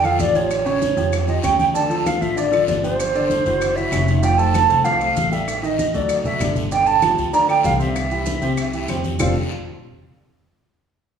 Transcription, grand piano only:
0.04 F3 F4 A4
0.35 F3 F4 G4
0.66 C#3 C#4 C#5
0.97 F3 F4 G4
1.28 F3 F4 G4
1.43 C#3 C#4 C#5
1.74 D3 D4 D5
1.90 F3 F4 A4
2.21 F3 F4 A4
2.36 D3 D4 D5
2.51 F3 F4 A4
2.83 F3 F4 G4
3.15 D3 D4 D5
3.46 E3 E4 F#4
3.77 E3 E4 F#4
3.92 C#3 C#4 C#5
4.22 F3 F4 F5
4.38 A3 A4 C5
4.69 A3 A4 C5
4.85 F3 F4 F5
5.00 A3 A4 C5
5.32 G3 G4 A4
5.63 D#3 D#4 D#5
5.94 F#3 F#4 A4
6.25 F#3 F#4 A4
6.40 D3 D4 D5
6.72 D3 D4 D5
7.02 F3 F4 G4
7.33 D3 D4 D5
7.48 D3 D4 D5
7.79 C3 C4 C5
8.11 E3 E4 G4
8.41 C3 C4 C5
8.73 E3 E4 G4
8.89 C3 C4 C5
9.19 F3 C4 D4 F4 A4 C5

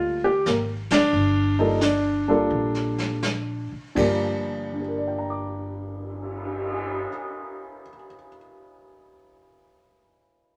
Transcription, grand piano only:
Already playing: G3 A#3 F4 A4
0.24 G4
0.47 A#3
0.92 D4
1.59 G3 A#3 D#4 F4 A4
1.81 D4
2.28 G3 A#3 D4 F4 A4
3.95 G2 F3 G3 A#3 G4
4.73 D4
4.80 G4
4.88 A#4
4.98 D5
5.08 G5
5.18 A#5
5.30 D6

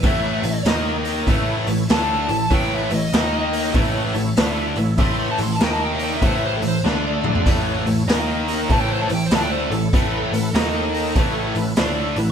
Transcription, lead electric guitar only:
0.07 E5
1.92 A5
2.54 G5
2.75 E5
2.94 D#5
5.00 C6
5.20 C6
5.31 A5
5.43 C6
5.52 A5
5.63 G5
5.73 A5
5.85 G5
5.92 E5
6.04 G5
6.13 E5
6.26 C5
6.35 E5
6.45 C5
6.57 A4
6.68 C5
6.87 D5
8.71 A5
8.81 G5
8.91 C5
9.02 A5
9.15 G5
9.26 C5
9.35 A5
9.42 G5
9.51 C5
9.63 A4

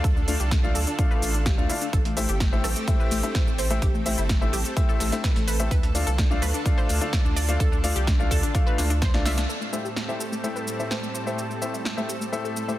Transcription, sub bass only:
0.04 D2
0.40 C2
0.75 D2
1.22 A1
1.58 D2
1.93 A1
2.29 G1
2.64 A1
3.11 A1
3.47 A1
3.82 A1
4.18 G1
4.53 A1
5.00 A1
5.36 A1
5.71 D2
6.07 C2
6.42 D2
6.89 D2
7.25 D2
7.60 D2
7.96 C2
8.31 D2
8.78 D2
9.14 C2

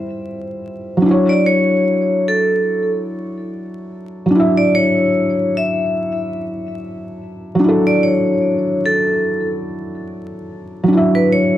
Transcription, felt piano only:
Already playing: G3 E4 F4 C5
0.97 F#3
1.02 D4
1.06 E4
1.11 C#5
4.26 F#3
4.31 D4
4.35 E4
4.40 E5
7.55 F#3
7.60 D4
7.64 E4
7.69 A4
10.83 F#3
10.88 D4
10.92 E4
10.97 E5

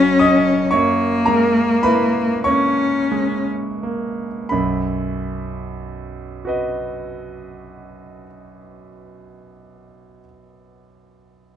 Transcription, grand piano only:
Already playing: F#1 F#2 F#3 C#4 E4 C#5 D#5 C#6 D#6
0.19 C#4 D#5 D#6
0.71 F#2 C#5 C#6
1.26 G#3 A#4 A#5
1.83 E4 B4 B5
2.44 A#3 C#5 C#6
3.12 G#3
3.83 A#3
4.49 B1 F#2 B5
6.45 F#4 B4 D#5

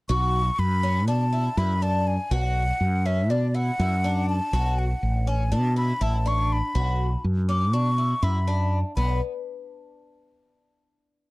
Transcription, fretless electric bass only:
0.09 B1
0.59 F#2
1.08 B2
1.57 F#2
2.31 B1
2.81 F#2
3.30 B2
3.80 F#2
4.53 B1
5.03 A1
5.52 B2
6.01 A1
6.75 B1
7.24 F#2
7.73 B2
8.23 F#2
8.97 B1

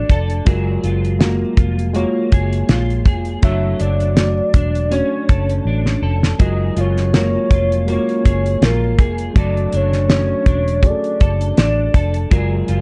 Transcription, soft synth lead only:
Already playing: D5
3.44 E5
3.81 D5
4.94 C#5
6.41 D#5
6.80 C#5
7.17 C#5
7.92 C#5
8.64 A#4
9.37 D5
9.76 C#5
10.11 C#5
10.86 D5
11.60 D5

